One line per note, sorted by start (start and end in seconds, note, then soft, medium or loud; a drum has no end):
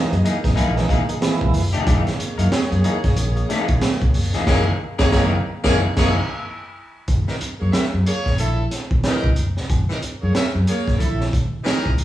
0.00 0.16 E3 loud
0.00 0.16 G#3 medium
0.00 0.17 A#3 medium
0.00 1.50 A#3 medium
0.00 0.17 D#4 loud
0.00 1.50 G#4 medium
0.00 1.50 D#5 medium
0.12 0.21 F#2 loud
0.12 closed hi-hat soft
0.24 0.36 E3 medium
0.24 0.36 A#3 medium
0.24 0.37 D#4 medium
0.24 0.37 G#4 medium
0.24 closed hi-hat medium
0.43 0.54 F#1 medium
0.43 0.51 E3 medium
0.43 0.52 G#3 medium
0.43 0.52 A#3 medium
0.43 0.52 D#4 medium
0.43 muted clean electric guitar stroke soft
0.43 kick medium
0.43 snare soft
0.43 closed hi-hat medium
0.55 0.81 A#1 loud
0.55 0.71 E3 medium
0.55 0.72 A#3 loud
0.55 0.66 A#3 soft
0.55 0.72 D#4 medium
0.55 0.67 E4 soft
0.55 0.72 G#4 medium
0.55 kick medium
0.55 closed hi-hat medium
0.75 0.93 E3 loud
0.75 0.93 G#3 loud
0.75 0.93 A#3 loud
0.75 0.94 D#4 loud
0.75 muted clean electric guitar stroke soft
0.75 snare soft
0.75 closed hi-hat soft
0.89 1.01 E3 medium
0.89 1.02 A#3 medium
0.89 1.02 D#4 medium
0.89 1.02 G#4 medium
0.89 kick medium
0.89 closed hi-hat medium
1.08 1.15 A#3 soft
1.08 1.15 D#4 soft
1.08 muted clean electric guitar stroke soft
1.08 closed hi-hat medium
1.21 1.62 E3 medium
1.21 1.62 G#3 medium
1.21 1.62 A#3 medium
1.21 1.63 E4 medium
1.21 muted clean electric guitar stroke soft
1.21 snare loud
1.21 closed hi-hat medium
1.41 1.51 C#2 medium
1.41 muted clean electric guitar stroke soft
1.41 kick medium
1.54 1.74 F#1 medium
1.54 open hi-hat medium
1.73 1.84 E1 loud
1.73 1.84 E3 medium
1.73 1.85 A#3 medium
1.73 1.85 D#4 medium
1.73 1.85 G#4 medium
1.73 closed hi-hat soft
1.85 2.01 F#1 medium
1.85 2.09 E3 medium
1.85 2.04 A#3 medium
1.85 4.43 A#3 medium
1.85 2.04 D#4 medium
1.85 2.03 G#4 medium
1.85 4.43 G#4 medium
1.85 4.43 C#5 medium
1.85 kick loud
1.85 closed hi-hat medium
2.04 muted clean electric guitar stroke soft
2.04 snare soft
2.04 closed hi-hat soft
2.18 muted clean electric guitar stroke soft
2.18 muted fingered electric bass stroke soft
2.18 closed hi-hat medium
2.38 2.48 F#2 loud
2.38 2.47 E3 medium
2.38 2.47 A#3 medium
2.38 2.47 D#4 medium
2.38 2.46 A#4 medium
2.38 closed hi-hat medium
2.51 muted clean electric guitar stroke soft
2.51 muted fingered electric bass stroke medium
2.51 snare loud
2.51 closed hi-hat medium
2.72 2.81 F#2 medium
2.72 closed hi-hat soft
2.84 2.97 E3 medium
2.84 2.97 A#3 medium
2.84 2.97 D#4 medium
2.84 2.97 G#4 medium
2.84 closed hi-hat medium
3.03 3.14 F#1 medium
3.03 muted clean electric guitar stroke soft
3.03 kick medium
3.03 snare soft
3.03 closed hi-hat soft
3.16 3.41 A#1 medium
3.16 closed hi-hat medium
3.36 muted clean electric guitar stroke soft
3.36 closed hi-hat soft
3.49 3.72 E3 medium
3.49 3.69 A#3 loud
3.49 3.68 D#4 medium
3.49 3.68 G#4 medium
3.49 snare soft
3.49 closed hi-hat medium
3.68 muted clean electric guitar stroke soft
3.68 kick loud
3.68 closed hi-hat soft
3.81 muted clean electric guitar stroke soft
3.81 snare loud
3.81 closed hi-hat medium
4.01 4.11 C#2 medium
4.01 muted clean electric guitar stroke soft
4.01 kick medium
4.01 closed hi-hat soft
4.14 4.34 F#1 medium
4.14 open hi-hat medium
4.34 4.44 E1 loud
4.34 4.45 E3 medium
4.34 4.45 A#3 medium
4.34 4.45 D#4 medium
4.34 4.45 G#4 medium
4.34 snare soft
4.34 closed hi-hat medium
4.47 4.70 F#1 loud
4.47 4.70 E3 medium
4.47 4.65 A#3 loud
4.47 4.71 A#3 medium
4.47 4.71 D#4 medium
4.47 4.64 G#4 loud
4.47 4.71 G#4 loud
4.47 4.65 C#5 medium
4.47 kick loud
4.47 snare loud
4.47 crash medium
4.98 5.10 F#1 loud
4.98 5.11 E3 medium
4.98 5.07 A#3 medium
4.98 5.11 A#3 medium
4.98 5.10 D#4 medium
4.98 5.07 G#4 medium
4.98 5.10 A#4 medium
4.98 5.07 C#5 loud
4.98 kick loud
4.98 snare loud
5.12 5.36 F#1 loud
5.12 5.36 E3 loud
5.12 5.30 A#3 medium
5.12 5.36 A#3 loud
5.12 5.36 D#4 loud
5.12 5.30 G#4 medium
5.12 5.36 A#4 loud
5.12 5.30 C#5 medium
5.12 kick loud
5.12 snare loud
5.64 5.86 F#1 medium
5.64 5.86 E3 loud
5.64 5.80 A#3 loud
5.64 5.86 A#3 medium
5.64 5.86 D#4 loud
5.64 5.80 G#4 loud
5.64 5.86 G#4 loud
5.64 5.80 C#5 loud
5.64 kick medium
5.64 snare loud
5.97 6.18 F#1 loud
5.97 6.18 E3 medium
5.97 6.13 A#3 medium
5.97 6.18 A#3 medium
5.97 6.19 D#4 loud
5.97 6.13 G#4 loud
5.97 6.19 G#4 medium
5.97 6.13 C#5 loud
5.97 kick loud
5.97 snare loud
5.97 crash medium
7.08 7.23 F#1 medium
7.08 kick loud
7.08 closed hi-hat medium
7.27 7.35 E3 medium
7.27 7.35 D#4 medium
7.27 7.36 A#4 medium
7.27 snare soft
7.41 muted fingered electric bass stroke soft
7.41 closed hi-hat medium
7.59 7.71 F#2 medium
7.59 7.70 A#3 medium
7.59 7.70 G#4 medium
7.59 7.71 C#5 medium
7.73 7.85 C#4 medium
7.73 7.85 A#4 medium
7.73 7.85 E5 medium
7.73 muted fingered electric bass stroke soft
7.73 snare loud
7.73 closed hi-hat medium
7.94 8.03 F#2 medium
8.06 8.33 A#3 medium
8.06 8.33 G#4 medium
8.06 8.33 C#5 loud
8.06 closed hi-hat medium
8.26 8.36 F#1 medium
8.26 kick medium
8.26 snare soft
8.38 8.63 A#1 medium
8.38 8.65 E4 medium
8.38 8.65 A4 loud
8.38 closed hi-hat medium
8.71 snare soft
8.71 closed hi-hat medium
8.91 kick loud
9.04 9.30 E3 loud
9.04 9.31 D#4 loud
9.04 9.31 A#4 loud
9.04 snare medium
9.04 closed hi-hat medium
9.24 9.34 C#2 medium
9.24 kick medium
9.36 9.57 F#1 medium
9.36 closed hi-hat medium
9.57 9.67 E1 medium
9.57 snare soft
9.70 9.84 F#1 medium
9.70 kick loud
9.70 closed hi-hat medium
9.89 9.97 E3 medium
9.89 9.97 D#4 medium
9.89 9.98 A#4 medium
9.89 snare soft
10.02 muted fingered electric bass stroke soft
10.02 closed hi-hat medium
10.21 10.33 F#2 medium
10.21 10.32 A#3 medium
10.21 10.32 G#4 medium
10.21 10.32 C#5 medium
10.34 10.46 C#4 medium
10.34 10.47 A#4 medium
10.34 10.46 E5 medium
10.34 muted fingered electric bass stroke soft
10.34 snare loud
10.34 closed hi-hat medium
10.55 10.65 F#2 medium
10.67 10.94 A#3 loud
10.67 10.94 G#4 medium
10.67 10.94 C#5 loud
10.67 closed hi-hat medium
10.88 10.97 F#1 medium
10.88 kick medium
10.88 snare soft
10.98 11.25 A#1 medium
10.98 11.26 E4 medium
10.98 11.25 A4 loud
10.98 kick medium
10.98 closed hi-hat medium
11.21 snare soft
11.33 kick medium
11.33 closed hi-hat medium
11.64 11.91 E3 loud
11.64 11.91 D#4 loud
11.64 11.91 A#4 loud
11.64 snare medium
11.64 closed hi-hat medium
11.86 11.96 C#2 medium
11.86 kick medium
11.98 12.04 F#1 medium
11.98 closed hi-hat medium